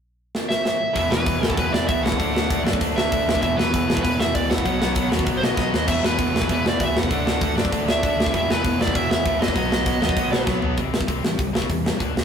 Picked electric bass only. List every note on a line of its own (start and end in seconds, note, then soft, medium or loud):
0.95 1.08 E1 medium
1.10 1.23 E1 medium
1.27 1.39 E1 medium
1.42 1.55 E1 medium
1.58 1.71 E1 medium
1.73 1.86 E1 medium
1.89 2.01 D2 medium
2.03 2.16 C#2 medium
2.20 2.45 D2 medium
2.51 2.63 D2 loud
2.65 2.78 F#2 medium
2.81 2.94 D2 medium
2.97 3.09 D2 medium
3.12 3.25 D2 medium
3.27 3.40 D2 medium
3.43 3.56 E1 medium
3.58 3.71 E1 medium
3.74 3.86 E1 medium
3.89 4.02 E1 medium
4.05 4.17 E1 medium
4.19 4.32 E1 loud
4.35 4.48 D2 medium
4.51 4.63 E1 medium
4.66 4.91 B1 medium
4.96 5.09 B1 medium
5.12 5.24 D#2 medium
5.27 5.40 B1 medium
5.42 5.55 B1 medium
5.57 5.70 B1 medium
5.73 5.86 D#2 medium
5.88 6.01 E1 loud
6.02 6.16 E1 medium
6.19 6.32 E1 medium
6.33 6.46 E1 medium
6.49 6.62 E1 medium
6.64 6.77 E1 medium
6.80 6.93 D2 medium
6.95 7.08 E1 medium
7.11 7.37 D2 medium
7.42 7.54 D2 loud
7.56 7.69 F#2 medium
7.72 7.85 D2 medium
7.86 7.99 D2 medium
8.03 8.16 D2 medium
8.17 8.30 D2 medium
8.34 8.46 E1 medium
8.48 8.61 E1 medium
8.65 8.77 E1 medium
8.79 8.92 E1 medium
8.95 9.08 E1 medium
9.10 9.22 E1 medium
9.26 9.38 D2 medium
9.40 9.53 E1 medium
9.56 9.81 B1 medium
9.86 9.99 B1 medium
10.02 10.14 D#2 medium
10.17 10.29 B1 medium
10.32 10.45 B1 loud
10.47 10.60 B1 medium
10.62 10.75 B1 medium
10.77 10.87 C2 medium
10.92 11.02 C3 medium
11.08 11.18 C2 medium
11.23 11.33 A1 medium
11.39 11.49 C2 medium
11.54 11.64 C2 medium
11.70 11.89 E2 medium
12.00 12.10 D2 medium
12.16 12.24 D2 medium